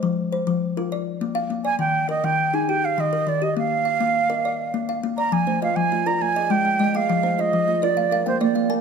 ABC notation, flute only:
X:1
M:12/8
L:1/8
Q:3/8=136
K:Fdor
V:1 name="Flute"
z8 z3 a | g2 e g2 a g f e2 d e | f8- f2 z b | a2 f a2 b a2 g3 f- |
f2 e3 d3 c d2 z |]